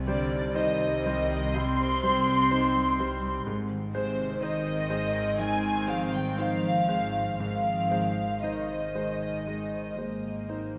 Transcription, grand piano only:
0.00 1.51 C2 medium
0.07 0.51 G3 soft
0.07 0.51 C5 soft
0.55 1.01 D#4 soft
0.55 1.01 C5 medium
1.06 1.52 G3 soft
1.06 1.52 C5 soft
1.55 2.02 G3 soft
2.03 2.48 G3 soft
2.03 2.48 C5 soft
2.51 2.95 D#4 soft
2.51 2.95 C5 medium
3.00 3.43 G3 soft
3.00 3.43 C5 medium
3.47 5.34 G#2 medium
3.95 4.38 G#3 soft
3.95 4.38 C5 soft
4.43 4.86 D#4 soft
4.43 4.87 C5 soft
4.90 5.35 G#3 soft
4.90 5.35 C5 soft
5.38 6.18 D#3 soft
5.88 6.34 G#3 soft
5.88 6.34 C5 soft
6.38 6.84 D#4 soft
6.38 6.84 C5 soft
6.88 7.35 G#3 soft
6.88 7.35 C5 soft
7.40 9.42 G#2 soft
7.91 8.39 G#3 soft
7.91 8.39 C5 soft
8.43 8.91 D#4 soft
8.43 8.91 C5 soft
8.95 9.42 G#3 soft
8.95 9.42 C5 soft
9.47 9.96 G#3 soft
9.98 10.44 G#3 soft
9.98 10.45 C5 soft
10.49 10.78 D#4 soft
10.49 10.78 C5 soft

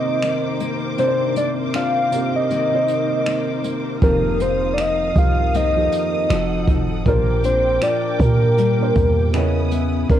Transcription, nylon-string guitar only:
0.00 0.97 C3 medium
0.00 0.22 D#3 medium
0.00 0.22 A#3 medium
0.22 2.50 D#3 medium
0.22 0.60 A#3 medium
0.60 1.36 A#3 medium
0.98 4.02 C3 medium
0.98 1.73 D4 medium
1.36 2.50 A#3 medium
1.74 2.50 D4 medium
2.50 3.26 D#3 medium
2.50 3.26 A#3 medium
3.26 5.54 D#3 medium
3.26 3.64 A#3 medium
3.64 4.40 A#3 medium
4.02 6.39 F2 medium
4.02 4.78 C4 medium
4.40 5.54 A#3 medium
4.78 5.54 C4 medium
5.54 6.30 D#3 medium
5.54 6.39 A#3 medium
5.54 6.39 C4 medium
6.30 8.58 F3 medium
6.68 7.06 D#4 medium
7.06 9.43 A#2 medium
7.06 7.81 F4 medium
7.44 8.57 D4 medium
7.82 8.58 F4 medium
8.58 9.43 G3 medium
8.58 9.43 D4 medium
8.58 9.43 F4 medium
9.34 10.09 C#3 medium
9.72 10.18 B3 medium
10.10 10.20 C3 medium
10.10 10.20 D4 medium

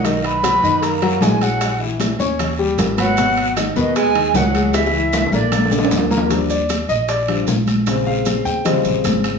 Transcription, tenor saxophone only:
0.04 0.25 D#3 medium
0.23 0.84 B3 medium
0.82 1.24 A#3 medium
1.22 1.44 G#3 medium
1.42 1.81 F#3 medium
2.99 3.53 F#3 medium
3.77 3.95 D#3 medium
3.96 4.36 G#3 loud
4.35 4.76 F#3 medium
4.75 5.33 E3 medium
5.33 6.07 D3 medium

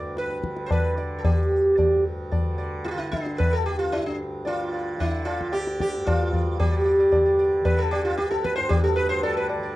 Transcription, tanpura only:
0.00 1.42 D2 medium
0.00 1.92 G2 medium
0.00 0.42 D3 medium
0.42 0.93 D3 medium
0.93 2.43 D3 medium
1.42 3.45 D2 medium
1.93 3.96 G2 medium
2.43 2.94 D3 medium
2.94 4.46 D3 medium
3.45 5.47 D2 medium
3.96 5.97 G2 medium
4.46 4.96 D3 medium
4.96 6.48 D3 medium
5.47 8.10 D2 medium
5.97 6.62 G2 medium
6.48 7.12 D3 medium
6.62 8.59 G2 medium
7.12 7.60 D3 medium
7.60 9.08 D3 medium
8.10 9.76 D2 medium
8.59 9.76 G2 medium
9.08 9.58 D3 medium
9.58 9.76 D3 medium

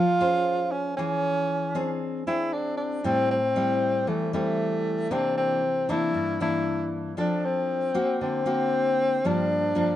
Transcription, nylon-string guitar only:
0.00 0.95 F3 medium
0.21 0.94 C#4 medium
0.21 0.94 G#4 medium
0.21 0.94 C5 medium
0.98 1.99 E3 medium
0.98 1.72 G#4 medium
1.75 2.22 C4 medium
1.75 2.23 D4 medium
1.75 2.23 G#4 medium
2.27 3.00 C4 medium
2.27 3.00 D4 medium
2.27 3.01 G#4 medium
3.04 4.05 A2 medium
3.04 3.37 G3 medium
3.04 3.38 C4 medium
3.04 3.38 E4 medium
3.56 4.29 G3 medium
3.56 4.29 C4 medium
3.56 4.29 E4 medium
4.07 5.08 E3 medium
4.33 5.07 G3 medium
4.33 5.07 C4 medium
4.33 5.07 E4 medium
5.11 6.11 C3 medium
5.11 5.62 E3 medium
5.11 5.62 A#3 medium
5.11 5.62 D4 medium
5.89 6.36 E3 medium
5.89 6.36 A#3 medium
5.89 6.36 D4 medium
6.14 7.15 G2 medium
6.40 7.13 E3 medium
6.40 7.14 A#3 medium
6.40 7.14 D4 medium
7.17 7.94 F3 medium
7.17 7.90 C4 medium
7.17 7.91 D4 medium
7.17 7.91 A4 medium
7.94 8.42 A#3 medium
7.94 8.42 C4 medium
7.94 8.42 F#4 medium
8.21 9.21 D3 medium
8.46 9.19 A#3 medium
8.46 9.19 C4 medium
8.46 9.20 F#4 medium
9.25 9.96 G2 medium
9.25 9.72 F3 medium
9.25 9.72 A#3 medium
9.25 9.72 D4 medium
9.75 9.96 F3 soft
9.75 9.96 A#3 medium
9.75 9.96 D4 medium

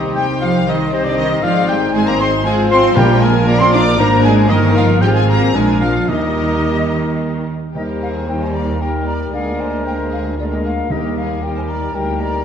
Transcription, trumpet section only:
0.00 2.93 C5 medium
2.96 4.46 A#4 loud
4.49 4.98 A#4 loud
5.01 5.54 G#4 medium
5.55 5.93 A#4 medium
6.09 7.45 A#4 medium
7.75 8.24 A#4 medium
8.28 8.79 A#4 medium
8.81 9.32 A#4 medium
9.33 10.36 A#4 medium
10.39 10.89 A#4 medium
10.90 11.41 A#4 medium
11.42 11.92 A#4 medium
11.94 12.44 A#4 medium

